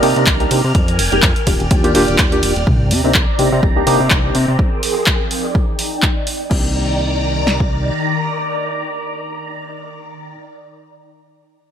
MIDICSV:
0, 0, Header, 1, 6, 480
1, 0, Start_track
1, 0, Key_signature, -3, "minor"
1, 0, Tempo, 480000
1, 750, Time_signature, 4, 2, 24, 8
1, 11713, End_track
2, 0, Start_track
2, 0, Title_t, "String machine"
2, 0, Program_c, 0, 50
2, 0, Note_on_c, 0, 74, 79
2, 0, Note_on_c, 0, 82, 74
2, 0, Note_on_c, 0, 89, 91
2, 719, Note_off_c, 0, 74, 0
2, 732, Note_off_c, 0, 82, 0
2, 749, Note_on_c, 0, 70, 80
2, 749, Note_on_c, 0, 80, 70
2, 750, Note_on_c, 0, 79, 71
2, 1460, Note_off_c, 0, 79, 0
2, 1462, Note_off_c, 0, 70, 0
2, 1462, Note_off_c, 0, 80, 0
2, 1470, Note_on_c, 0, 74, 77
2, 1472, Note_on_c, 0, 79, 70
2, 2630, Note_off_c, 0, 89, 0
2, 2658, Note_off_c, 0, 74, 0
2, 2659, Note_off_c, 0, 79, 0
2, 2670, Note_on_c, 0, 82, 88
2, 2672, Note_on_c, 0, 60, 78
2, 2672, Note_on_c, 0, 74, 72
2, 4571, Note_off_c, 0, 82, 0
2, 4572, Note_off_c, 0, 74, 0
2, 4591, Note_on_c, 0, 53, 73
2, 4591, Note_on_c, 0, 70, 67
2, 4592, Note_on_c, 0, 68, 65
2, 4593, Note_on_c, 0, 79, 86
2, 5284, Note_off_c, 0, 60, 0
2, 5303, Note_off_c, 0, 53, 0
2, 5303, Note_off_c, 0, 70, 0
2, 5304, Note_off_c, 0, 68, 0
2, 5308, Note_on_c, 0, 63, 72
2, 5308, Note_on_c, 0, 74, 67
2, 6492, Note_off_c, 0, 79, 0
2, 6497, Note_off_c, 0, 63, 0
2, 6497, Note_off_c, 0, 74, 0
2, 6507, Note_on_c, 0, 82, 85
2, 6508, Note_on_c, 0, 51, 78
2, 6508, Note_on_c, 0, 74, 68
2, 10333, Note_off_c, 0, 82, 0
2, 10334, Note_off_c, 0, 74, 0
2, 10335, Note_off_c, 0, 51, 0
2, 11713, End_track
3, 0, Start_track
3, 0, Title_t, "Reed electric piano"
3, 0, Program_c, 1, 4
3, 26, Note_on_c, 1, 58, 100
3, 29, Note_on_c, 1, 62, 88
3, 32, Note_on_c, 1, 63, 88
3, 34, Note_on_c, 1, 67, 109
3, 369, Note_off_c, 1, 58, 0
3, 371, Note_off_c, 1, 62, 0
3, 372, Note_off_c, 1, 63, 0
3, 374, Note_off_c, 1, 67, 0
3, 401, Note_on_c, 1, 58, 79
3, 403, Note_on_c, 1, 62, 70
3, 406, Note_on_c, 1, 63, 70
3, 410, Note_on_c, 1, 67, 87
3, 599, Note_off_c, 1, 58, 0
3, 600, Note_off_c, 1, 62, 0
3, 602, Note_off_c, 1, 63, 0
3, 604, Note_off_c, 1, 67, 0
3, 1118, Note_on_c, 1, 56, 85
3, 1121, Note_on_c, 1, 58, 80
3, 1124, Note_on_c, 1, 63, 76
3, 1127, Note_on_c, 1, 67, 97
3, 1234, Note_off_c, 1, 56, 0
3, 1235, Note_off_c, 1, 58, 0
3, 1237, Note_off_c, 1, 63, 0
3, 1238, Note_off_c, 1, 67, 0
3, 1467, Note_on_c, 1, 58, 87
3, 1470, Note_on_c, 1, 62, 76
3, 1471, Note_on_c, 1, 65, 74
3, 1474, Note_on_c, 1, 67, 93
3, 1607, Note_off_c, 1, 58, 0
3, 1609, Note_off_c, 1, 62, 0
3, 1609, Note_off_c, 1, 65, 0
3, 1611, Note_off_c, 1, 67, 0
3, 1705, Note_on_c, 1, 58, 77
3, 1708, Note_on_c, 1, 62, 69
3, 1711, Note_on_c, 1, 65, 70
3, 1713, Note_on_c, 1, 67, 85
3, 1821, Note_off_c, 1, 58, 0
3, 1823, Note_off_c, 1, 62, 0
3, 1824, Note_off_c, 1, 65, 0
3, 1825, Note_off_c, 1, 67, 0
3, 1839, Note_on_c, 1, 58, 84
3, 1840, Note_on_c, 1, 62, 76
3, 1844, Note_on_c, 1, 65, 78
3, 1847, Note_on_c, 1, 67, 93
3, 1922, Note_off_c, 1, 58, 0
3, 1923, Note_off_c, 1, 62, 0
3, 1924, Note_off_c, 1, 65, 0
3, 1926, Note_off_c, 1, 67, 0
3, 1947, Note_on_c, 1, 58, 98
3, 1949, Note_on_c, 1, 62, 87
3, 1953, Note_on_c, 1, 65, 90
3, 1955, Note_on_c, 1, 67, 108
3, 2290, Note_off_c, 1, 58, 0
3, 2291, Note_off_c, 1, 62, 0
3, 2293, Note_off_c, 1, 65, 0
3, 2294, Note_off_c, 1, 67, 0
3, 2320, Note_on_c, 1, 58, 78
3, 2323, Note_on_c, 1, 62, 73
3, 2324, Note_on_c, 1, 65, 70
3, 2328, Note_on_c, 1, 67, 88
3, 2519, Note_off_c, 1, 58, 0
3, 2520, Note_off_c, 1, 62, 0
3, 2521, Note_off_c, 1, 65, 0
3, 2522, Note_off_c, 1, 67, 0
3, 3040, Note_on_c, 1, 58, 79
3, 3042, Note_on_c, 1, 62, 72
3, 3046, Note_on_c, 1, 63, 71
3, 3047, Note_on_c, 1, 67, 87
3, 3155, Note_off_c, 1, 58, 0
3, 3156, Note_off_c, 1, 62, 0
3, 3157, Note_off_c, 1, 63, 0
3, 3158, Note_off_c, 1, 67, 0
3, 3384, Note_on_c, 1, 58, 79
3, 3387, Note_on_c, 1, 62, 73
3, 3390, Note_on_c, 1, 63, 72
3, 3392, Note_on_c, 1, 67, 85
3, 3526, Note_off_c, 1, 58, 0
3, 3527, Note_off_c, 1, 62, 0
3, 3528, Note_off_c, 1, 63, 0
3, 3530, Note_off_c, 1, 67, 0
3, 3625, Note_on_c, 1, 58, 70
3, 3628, Note_on_c, 1, 62, 64
3, 3631, Note_on_c, 1, 63, 64
3, 3633, Note_on_c, 1, 67, 77
3, 3741, Note_off_c, 1, 58, 0
3, 3742, Note_off_c, 1, 62, 0
3, 3744, Note_off_c, 1, 63, 0
3, 3745, Note_off_c, 1, 67, 0
3, 3759, Note_on_c, 1, 58, 76
3, 3763, Note_on_c, 1, 62, 73
3, 3765, Note_on_c, 1, 63, 71
3, 3768, Note_on_c, 1, 67, 85
3, 3842, Note_off_c, 1, 58, 0
3, 3844, Note_off_c, 1, 62, 0
3, 3845, Note_off_c, 1, 63, 0
3, 3847, Note_off_c, 1, 67, 0
3, 3864, Note_on_c, 1, 58, 90
3, 3868, Note_on_c, 1, 62, 85
3, 3870, Note_on_c, 1, 63, 82
3, 3873, Note_on_c, 1, 67, 103
3, 4209, Note_off_c, 1, 58, 0
3, 4211, Note_off_c, 1, 62, 0
3, 4212, Note_off_c, 1, 63, 0
3, 4213, Note_off_c, 1, 67, 0
3, 4240, Note_on_c, 1, 58, 73
3, 4243, Note_on_c, 1, 62, 66
3, 4245, Note_on_c, 1, 63, 67
3, 4248, Note_on_c, 1, 67, 79
3, 4439, Note_off_c, 1, 58, 0
3, 4440, Note_off_c, 1, 62, 0
3, 4441, Note_off_c, 1, 63, 0
3, 4443, Note_off_c, 1, 67, 0
3, 6498, Note_on_c, 1, 58, 74
3, 6506, Note_on_c, 1, 62, 69
3, 6514, Note_on_c, 1, 63, 69
3, 6522, Note_on_c, 1, 67, 83
3, 10324, Note_off_c, 1, 58, 0
3, 10332, Note_off_c, 1, 62, 0
3, 10340, Note_off_c, 1, 63, 0
3, 10348, Note_off_c, 1, 67, 0
3, 11713, End_track
4, 0, Start_track
4, 0, Title_t, "Analog synth bass"
4, 0, Program_c, 2, 38
4, 29, Note_on_c, 2, 48, 92
4, 137, Note_off_c, 2, 48, 0
4, 163, Note_on_c, 2, 48, 100
4, 249, Note_off_c, 2, 48, 0
4, 270, Note_on_c, 2, 36, 98
4, 468, Note_off_c, 2, 36, 0
4, 511, Note_on_c, 2, 48, 85
4, 618, Note_off_c, 2, 48, 0
4, 645, Note_on_c, 2, 48, 84
4, 730, Note_off_c, 2, 48, 0
4, 749, Note_on_c, 2, 41, 103
4, 991, Note_on_c, 2, 29, 95
4, 1006, Note_off_c, 2, 41, 0
4, 1098, Note_off_c, 2, 29, 0
4, 1126, Note_on_c, 2, 29, 82
4, 1210, Note_off_c, 2, 29, 0
4, 1230, Note_on_c, 2, 41, 100
4, 1337, Note_off_c, 2, 41, 0
4, 1470, Note_on_c, 2, 27, 88
4, 1577, Note_off_c, 2, 27, 0
4, 1606, Note_on_c, 2, 27, 104
4, 1690, Note_off_c, 2, 27, 0
4, 1710, Note_on_c, 2, 39, 77
4, 1952, Note_on_c, 2, 27, 105
4, 1967, Note_off_c, 2, 39, 0
4, 2058, Note_off_c, 2, 27, 0
4, 2086, Note_on_c, 2, 27, 100
4, 2170, Note_off_c, 2, 27, 0
4, 2190, Note_on_c, 2, 39, 81
4, 2432, Note_on_c, 2, 27, 87
4, 2447, Note_off_c, 2, 39, 0
4, 2538, Note_off_c, 2, 27, 0
4, 2566, Note_on_c, 2, 27, 95
4, 2650, Note_off_c, 2, 27, 0
4, 2670, Note_on_c, 2, 36, 96
4, 2912, Note_on_c, 2, 48, 91
4, 2927, Note_off_c, 2, 36, 0
4, 3019, Note_off_c, 2, 48, 0
4, 3045, Note_on_c, 2, 48, 80
4, 3130, Note_off_c, 2, 48, 0
4, 3150, Note_on_c, 2, 36, 91
4, 3258, Note_off_c, 2, 36, 0
4, 3389, Note_on_c, 2, 48, 82
4, 3497, Note_off_c, 2, 48, 0
4, 3524, Note_on_c, 2, 48, 101
4, 3609, Note_off_c, 2, 48, 0
4, 3630, Note_on_c, 2, 36, 75
4, 3829, Note_off_c, 2, 36, 0
4, 3871, Note_on_c, 2, 48, 88
4, 3978, Note_off_c, 2, 48, 0
4, 4004, Note_on_c, 2, 48, 95
4, 4089, Note_off_c, 2, 48, 0
4, 4110, Note_on_c, 2, 36, 95
4, 4308, Note_off_c, 2, 36, 0
4, 4350, Note_on_c, 2, 48, 79
4, 4458, Note_off_c, 2, 48, 0
4, 4483, Note_on_c, 2, 48, 79
4, 4569, Note_off_c, 2, 48, 0
4, 6509, Note_on_c, 2, 36, 91
4, 7909, Note_off_c, 2, 36, 0
4, 11713, End_track
5, 0, Start_track
5, 0, Title_t, "Sub drop"
5, 0, Program_c, 3, 103
5, 2670, Note_on_c, 3, 60, 70
5, 4590, Note_off_c, 3, 60, 0
5, 11713, End_track
6, 0, Start_track
6, 0, Title_t, "Drums"
6, 29, Note_on_c, 9, 46, 102
6, 29, Note_on_c, 9, 51, 83
6, 129, Note_off_c, 9, 46, 0
6, 129, Note_off_c, 9, 51, 0
6, 163, Note_on_c, 9, 42, 39
6, 263, Note_off_c, 9, 42, 0
6, 264, Note_on_c, 9, 39, 120
6, 269, Note_on_c, 9, 42, 81
6, 269, Note_on_c, 9, 51, 58
6, 270, Note_on_c, 9, 36, 117
6, 364, Note_off_c, 9, 39, 0
6, 369, Note_off_c, 9, 42, 0
6, 369, Note_off_c, 9, 51, 0
6, 370, Note_off_c, 9, 36, 0
6, 403, Note_on_c, 9, 42, 53
6, 503, Note_off_c, 9, 42, 0
6, 509, Note_on_c, 9, 46, 102
6, 509, Note_on_c, 9, 51, 85
6, 609, Note_off_c, 9, 46, 0
6, 609, Note_off_c, 9, 51, 0
6, 748, Note_on_c, 9, 42, 83
6, 748, Note_on_c, 9, 51, 60
6, 749, Note_on_c, 9, 36, 114
6, 848, Note_off_c, 9, 42, 0
6, 848, Note_off_c, 9, 51, 0
6, 849, Note_off_c, 9, 36, 0
6, 882, Note_on_c, 9, 42, 55
6, 982, Note_off_c, 9, 42, 0
6, 989, Note_on_c, 9, 46, 102
6, 989, Note_on_c, 9, 51, 81
6, 1089, Note_off_c, 9, 46, 0
6, 1089, Note_off_c, 9, 51, 0
6, 1122, Note_on_c, 9, 42, 40
6, 1222, Note_off_c, 9, 42, 0
6, 1224, Note_on_c, 9, 39, 123
6, 1228, Note_on_c, 9, 42, 84
6, 1228, Note_on_c, 9, 51, 59
6, 1229, Note_on_c, 9, 36, 119
6, 1324, Note_off_c, 9, 39, 0
6, 1328, Note_off_c, 9, 42, 0
6, 1328, Note_off_c, 9, 51, 0
6, 1329, Note_off_c, 9, 36, 0
6, 1361, Note_on_c, 9, 42, 59
6, 1461, Note_off_c, 9, 42, 0
6, 1468, Note_on_c, 9, 46, 105
6, 1468, Note_on_c, 9, 51, 83
6, 1470, Note_on_c, 9, 36, 63
6, 1568, Note_off_c, 9, 46, 0
6, 1568, Note_off_c, 9, 51, 0
6, 1570, Note_off_c, 9, 36, 0
6, 1601, Note_on_c, 9, 42, 40
6, 1701, Note_off_c, 9, 42, 0
6, 1708, Note_on_c, 9, 42, 89
6, 1708, Note_on_c, 9, 51, 59
6, 1710, Note_on_c, 9, 36, 118
6, 1808, Note_off_c, 9, 42, 0
6, 1808, Note_off_c, 9, 51, 0
6, 1810, Note_off_c, 9, 36, 0
6, 1842, Note_on_c, 9, 42, 55
6, 1942, Note_off_c, 9, 42, 0
6, 1948, Note_on_c, 9, 46, 105
6, 1948, Note_on_c, 9, 51, 84
6, 2048, Note_off_c, 9, 46, 0
6, 2048, Note_off_c, 9, 51, 0
6, 2082, Note_on_c, 9, 42, 40
6, 2182, Note_off_c, 9, 42, 0
6, 2183, Note_on_c, 9, 39, 119
6, 2188, Note_on_c, 9, 42, 82
6, 2188, Note_on_c, 9, 51, 59
6, 2190, Note_on_c, 9, 36, 116
6, 2283, Note_off_c, 9, 39, 0
6, 2288, Note_off_c, 9, 42, 0
6, 2288, Note_off_c, 9, 51, 0
6, 2290, Note_off_c, 9, 36, 0
6, 2322, Note_on_c, 9, 42, 57
6, 2422, Note_off_c, 9, 42, 0
6, 2428, Note_on_c, 9, 46, 104
6, 2428, Note_on_c, 9, 51, 84
6, 2528, Note_off_c, 9, 46, 0
6, 2528, Note_off_c, 9, 51, 0
6, 2563, Note_on_c, 9, 42, 40
6, 2663, Note_off_c, 9, 42, 0
6, 2670, Note_on_c, 9, 36, 115
6, 2770, Note_off_c, 9, 36, 0
6, 2910, Note_on_c, 9, 46, 101
6, 3010, Note_off_c, 9, 46, 0
6, 3144, Note_on_c, 9, 39, 117
6, 3150, Note_on_c, 9, 36, 117
6, 3244, Note_off_c, 9, 39, 0
6, 3250, Note_off_c, 9, 36, 0
6, 3388, Note_on_c, 9, 46, 99
6, 3488, Note_off_c, 9, 46, 0
6, 3630, Note_on_c, 9, 36, 112
6, 3730, Note_off_c, 9, 36, 0
6, 3868, Note_on_c, 9, 46, 100
6, 3968, Note_off_c, 9, 46, 0
6, 4104, Note_on_c, 9, 39, 115
6, 4110, Note_on_c, 9, 36, 112
6, 4204, Note_off_c, 9, 39, 0
6, 4210, Note_off_c, 9, 36, 0
6, 4347, Note_on_c, 9, 46, 97
6, 4447, Note_off_c, 9, 46, 0
6, 4590, Note_on_c, 9, 36, 115
6, 4690, Note_off_c, 9, 36, 0
6, 4829, Note_on_c, 9, 46, 101
6, 4929, Note_off_c, 9, 46, 0
6, 5063, Note_on_c, 9, 39, 117
6, 5070, Note_on_c, 9, 36, 117
6, 5163, Note_off_c, 9, 39, 0
6, 5170, Note_off_c, 9, 36, 0
6, 5308, Note_on_c, 9, 46, 100
6, 5408, Note_off_c, 9, 46, 0
6, 5550, Note_on_c, 9, 36, 113
6, 5650, Note_off_c, 9, 36, 0
6, 5788, Note_on_c, 9, 46, 100
6, 5888, Note_off_c, 9, 46, 0
6, 6024, Note_on_c, 9, 39, 108
6, 6030, Note_on_c, 9, 36, 114
6, 6124, Note_off_c, 9, 39, 0
6, 6130, Note_off_c, 9, 36, 0
6, 6268, Note_on_c, 9, 46, 101
6, 6368, Note_off_c, 9, 46, 0
6, 6508, Note_on_c, 9, 49, 78
6, 6509, Note_on_c, 9, 36, 104
6, 6608, Note_off_c, 9, 49, 0
6, 6609, Note_off_c, 9, 36, 0
6, 7469, Note_on_c, 9, 38, 54
6, 7569, Note_off_c, 9, 38, 0
6, 7603, Note_on_c, 9, 36, 67
6, 7703, Note_off_c, 9, 36, 0
6, 11713, End_track
0, 0, End_of_file